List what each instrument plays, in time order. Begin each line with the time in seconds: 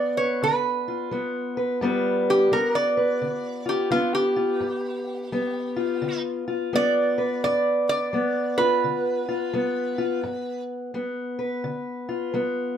Already playing: steel-string acoustic guitar G3 B3 B4, resonator guitar played with a steel bar D5
0.17 steel-string acoustic guitar B4, resonator guitar played with a steel bar C#5
0.43 steel-string acoustic guitar D3, resonator guitar played with a steel bar B4
0.88 steel-string acoustic guitar F4
1.11 steel-string acoustic guitar G3 B3
1.57 steel-string acoustic guitar B4
1.81 steel-string acoustic guitar G2 G3 B3 F4 B4
2.30 resonator guitar played with a steel bar G4
2.51 steel-string acoustic guitar G3 B3, resonator guitar played with a steel bar A#4
2.75 resonator guitar played with a steel bar D5
2.97 steel-string acoustic guitar B4
3.22 steel-string acoustic guitar D3
3.66 steel-string acoustic guitar F4, resonator guitar played with a steel bar G4
3.91 steel-string acoustic guitar G3 B3, resonator guitar played with a steel bar F4
4.15 resonator guitar played with a steel bar G4
4.36 steel-string acoustic guitar F4
4.60 steel-string acoustic guitar G2
5.32 steel-string acoustic guitar G3 B3
5.76 steel-string acoustic guitar F4
6.02 steel-string acoustic guitar D3
6.48 steel-string acoustic guitar F4
6.73 steel-string acoustic guitar G3 B3, resonator guitar played with a steel bar D5
7.18 steel-string acoustic guitar B4
7.44 steel-string acoustic guitar G2, resonator guitar played with a steel bar D5
7.89 resonator guitar played with a steel bar D5
8.13 steel-string acoustic guitar G3 B3
8.58 steel-string acoustic guitar F4, resonator guitar played with a steel bar B4
8.84 steel-string acoustic guitar D3
9.28 steel-string acoustic guitar F4
9.53 steel-string acoustic guitar G3 B3
9.98 steel-string acoustic guitar F4
10.23 steel-string acoustic guitar G2
10.94 steel-string acoustic guitar G3 B3
11.39 steel-string acoustic guitar B4
11.64 steel-string acoustic guitar D3
12.09 steel-string acoustic guitar F4
12.34 steel-string acoustic guitar G3 B3